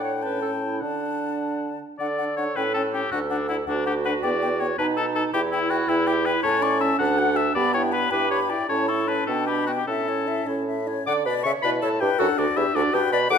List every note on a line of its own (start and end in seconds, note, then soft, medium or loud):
0.00 0.83 A2 soft
0.00 0.24 D4 soft
0.00 0.12 C#5 medium
0.00 0.25 F#5 soft
0.00 0.24 G5 soft
0.22 0.83 C#4 soft
0.22 0.41 B4 medium
0.22 0.83 G5 soft
0.22 0.81 A5 soft
0.42 0.51 A4 soft
0.62 0.84 E4 soft
0.81 1.81 D3 soft
0.81 1.80 D4 soft
0.81 1.81 D4 soft
0.81 1.80 F#5 soft
0.81 1.78 A5 soft
1.99 2.50 D3 soft
1.99 2.08 D4 soft
1.99 3.64 A4 medium
1.99 2.34 D5 medium
1.99 2.06 F#5 soft
2.18 2.28 D4 soft
2.18 2.24 F#5 soft
2.37 2.47 D4 soft
2.37 2.57 C#5 medium
2.37 2.43 F#5 soft
2.56 3.06 A2 medium
2.56 2.65 C#4 soft
2.56 2.74 B4 medium
2.56 2.63 G5 soft
2.74 2.83 C#4 soft
2.74 2.83 A4 medium
2.74 2.81 G5 soft
2.93 3.02 C#4 soft
2.93 3.11 G4 medium
2.93 3.00 G5 soft
3.12 3.62 D2 medium
3.12 3.21 D4 medium
3.12 3.20 F#4 medium
3.12 3.18 F#5 soft
3.30 3.48 D4 medium
3.30 3.39 D4 soft
3.30 3.36 F#5 soft
3.48 3.58 D4 soft
3.48 3.57 E4 medium
3.48 3.54 F#5 soft
3.67 4.17 D2 medium
3.67 3.76 D4 soft
3.67 3.86 D4 medium
3.67 4.76 F#4 medium
3.67 3.73 F#5 soft
3.86 3.95 D4 soft
3.86 3.95 G4 medium
3.86 3.92 F#5 soft
4.05 4.14 D4 medium
4.05 4.14 B4 medium
4.05 4.11 F#5 soft
4.23 4.73 E2 medium
4.23 4.33 B3 medium
4.23 4.62 D5 medium
4.23 4.29 G5 medium
4.42 4.51 B3 soft
4.42 4.48 G5 medium
4.60 4.69 B3 medium
4.60 4.78 C#5 medium
4.60 4.66 G5 soft
4.78 5.27 B2 medium
4.78 5.32 D#4 medium
4.78 4.87 D#4 medium
4.78 4.87 B4 medium
4.78 4.85 A5 soft
4.97 5.06 D#4 medium
4.97 5.05 A4 medium
4.97 5.03 A5 medium
5.15 5.24 D#4 soft
5.15 5.24 A4 medium
5.15 5.22 A5 soft
5.33 5.82 E2 medium
5.33 6.45 E4 medium
5.33 5.42 E4 medium
5.33 5.42 G4 medium
5.33 5.40 G5 medium
5.52 5.72 E4 medium
5.52 5.61 E4 medium
5.52 5.59 G5 medium
5.70 5.79 E4 medium
5.70 5.90 F#4 medium
5.70 5.76 G5 medium
5.88 6.37 E2 medium
5.88 6.09 E4 medium
5.88 5.97 E4 medium
5.88 5.94 G5 soft
6.07 6.15 E4 medium
6.07 6.27 G4 medium
6.07 6.13 G5 medium
6.25 6.34 E4 medium
6.25 6.43 B4 medium
6.25 6.31 G5 medium
6.43 6.93 A2 medium
6.43 7.00 C#4 medium
6.43 6.64 C#4 medium
6.43 6.64 C#5 loud
6.43 6.64 A5 medium
6.62 6.82 E4 medium
6.62 6.80 D5 medium
6.62 6.83 C#6 medium
6.81 6.98 C#4 medium
6.81 6.98 E5 medium
6.81 7.00 A5 soft
6.98 7.49 D2 medium
6.98 7.55 D4 medium
6.98 7.20 A4 medium
6.98 7.38 F#5 medium
6.98 7.20 A5 medium
7.18 7.38 F#4 medium
7.18 7.38 F#5 medium
7.36 7.55 A4 medium
7.36 7.54 E5 medium
7.36 7.54 A5 soft
7.55 8.06 G2 medium
7.55 8.11 B3 medium
7.55 7.76 G4 medium
7.55 7.74 D5 loud
7.55 7.75 B5 medium
7.74 7.95 E4 medium
7.74 7.83 C#5 medium
7.74 7.94 G5 medium
7.92 8.14 G4 medium
7.92 8.11 B4 medium
7.92 8.12 B5 medium
8.11 8.54 G2 medium
8.11 8.30 E4 medium
8.11 8.48 G4 medium
8.11 8.31 B4 medium
8.11 8.30 G5 medium
8.30 8.52 G4 medium
8.30 8.40 C#5 medium
8.30 8.51 B5 soft
8.50 8.68 E4 medium
8.50 8.69 D5 medium
8.50 8.68 G5 medium
8.68 9.21 A2 medium
8.68 8.91 C#4 medium
8.68 9.29 E4 medium
8.68 8.88 C#5 medium
8.68 8.90 A5 medium
8.88 9.10 E4 medium
8.88 9.10 A4 medium
8.88 9.10 C#6 medium
9.08 9.27 C#4 soft
9.08 9.26 B4 medium
9.08 9.28 A5 soft
9.27 9.81 B2 medium
9.27 9.49 B3 medium
9.27 9.86 D4 medium
9.27 9.46 A4 medium
9.27 9.50 G5 soft
9.47 9.69 D4 soft
9.47 9.66 G4 medium
9.47 9.70 B5 soft
9.67 9.87 B3 soft
9.67 9.72 F#4 medium
9.67 9.88 G5 soft
9.77 9.87 G4 medium
9.87 10.41 A2 medium
9.87 10.76 C#4 medium
9.87 10.09 E4 soft
9.87 10.46 A4 medium
9.87 10.10 E5 soft
10.08 10.29 C#4 soft
10.08 10.29 C#5 soft
10.27 10.49 E4 soft
10.27 10.48 E5 soft
10.47 11.01 A2 medium
10.47 10.67 C#4 soft
10.47 10.67 C#5 soft
10.67 10.90 E4 soft
10.67 10.89 E5 soft
10.87 11.08 C#4 soft
10.87 11.06 C#5 soft
11.07 11.27 D3 medium
11.07 11.25 D5 medium
11.07 11.13 F#5 medium
11.07 11.15 D6 medium
11.26 11.44 B2 medium
11.26 11.35 B4 medium
11.26 11.44 D5 medium
11.26 11.34 B5 medium
11.44 11.53 C#3 medium
11.44 11.64 C#5 medium
11.44 11.51 E5 medium
11.44 11.52 C#6 medium
11.62 11.82 B2 medium
11.62 12.16 E4 medium
11.62 11.72 B4 medium
11.62 11.70 D5 medium
11.62 11.71 B5 medium
11.82 12.01 A2 medium
11.82 11.91 A4 medium
11.82 11.88 C#5 medium
11.82 12.02 A5 medium
12.00 12.10 G2 medium
12.00 12.09 G4 medium
12.00 12.20 B4 medium
12.00 12.21 G5 medium
12.19 12.28 F#2 medium
12.19 12.77 D4 medium
12.19 12.28 F#4 medium
12.19 12.40 A4 medium
12.19 12.40 F#5 medium
12.38 12.47 D2 medium
12.38 12.46 D4 medium
12.38 12.59 F#4 medium
12.38 12.58 D5 medium
12.56 12.65 E2 medium
12.56 12.64 E4 medium
12.56 12.75 G4 medium
12.56 12.77 E5 medium
12.75 12.83 D2 medium
12.75 12.92 D4 medium
12.75 12.81 F#4 medium
12.75 13.30 F#4 medium
12.75 12.96 D5 medium
12.93 13.02 G2 medium
12.93 13.01 G4 medium
12.93 13.11 B4 medium
12.93 13.12 G5 medium
13.12 13.30 B2 medium
13.12 13.30 B4 medium
13.12 13.19 D5 medium
13.12 13.30 B5 medium
13.30 13.38 E2 medium
13.30 13.38 G4 medium
13.30 13.38 A4 loud
13.30 13.38 F#5 loud
13.30 13.38 D6 loud